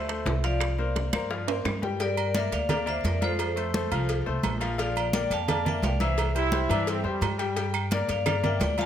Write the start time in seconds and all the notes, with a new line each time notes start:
Already playing: D2 C5 E5
0.08 A3 A4 C5, high conga, high timbale
0.26 C2, high bongo, low bongo, high conga, low timbale
0.44 F3 F4 D5 F5, high timbale
0.60 high bongo, high conga, high timbale, claves
0.78 A#3 A#4 C5, high conga
0.96 high bongo, high conga, high timbale, low timbale
1.13 G2 A#3 A#4 C5, high bongo, high conga, high timbale, claves
1.30 F3 F4 F5, high bongo, high conga
1.47 A#3 A#4 C5, high bongo, high conga, high timbale
1.65 G2, high bongo, low bongo, high conga, high timbale, claves
1.82 G3 G4 G5, high bongo, high conga, low timbale
2.00 G3 G4 A#4 D5 G5, cowbell, high conga, low agogo
2.17 A#4 D5, high conga, low agogo
2.34 A#3 A#4 D5 E5, cowbell, high conga, low agogo
2.52 D2 D5 F5, cowbell, high conga, low agogo
2.69 A#3 A#4 D5 F5, cowbell, high conga, low conga, low agogo
2.86 A#3 A#4 C5 D5 E5, high conga, low agogo
3.01 F2 E5, cowbell, high conga
3.05 A#4 D5, low timbale, low agogo
3.21 F3 F4 A4 C5 F5, cowbell, high conga, low agogo
3.39 cowbell, high conga, low agogo
3.56 A3 A4 C5, high conga, low agogo
3.74 A3 A4 C5, cowbell, high conga
3.91 C2 F3 F4 F5, low agogo
4.09 cowbell, high conga, low agogo
4.26 C2 A3 A4 C5, high conga
4.43 A#1, cowbell, high conga, low timbale, low agogo
4.60 F3 F4 F5, cowbell, high conga, low agogo
4.78 F3 F4 D5 F5, cowbell, high conga, low agogo
4.96 D5 F5, high conga, low agogo
5.13 A#3 A#4 D5 G5, cowbell, high conga, low agogo
5.30 F2 F5 A5, cowbell, high conga, low agogo
5.48 A#3 A#4 D5 F5 A5, cowbell, high conga, low conga, low agogo
5.65 A#3 A#4 D5 E5 G5, high conga, low conga, low agogo
5.82 C2 D5 F5, cowbell, high conga, low timbale, low agogo
6.00 E3 E4 C5 E5, cowbell, high conga, low agogo
6.17 cowbell, high conga, low agogo
6.35 G3 E4 G4 C5, high conga, low agogo
6.52 G3 G4 C5, cowbell, high conga
6.69 G2 E3 D4 E4 E5, low agogo
6.87 C4, cowbell, high conga, low agogo
7.04 F2 G3 G4 C5, high conga
7.21 G2, cowbell, high conga, low timbale, low agogo
7.39 G3 G4 G5, cowbell, high conga, low agogo
7.56 G3 G4 G5, cowbell, high conga, low agogo
7.74 high conga, low agogo, claves
7.91 A#3 A#4 D5, cowbell, high conga, low agogo
8.08 G2 D5 F5, cowbell, high conga, low agogo
8.26 A#3 A#4 D5 F5, cowbell, high conga, low conga, low agogo, claves
8.44 A#3 A#4 D5 E5 G5, high conga, low conga, low agogo
8.60 D2 D5 G5, cowbell, high conga, low timbale, low agogo
8.78 F3 F4 F5 A5, cowbell, high conga, low agogo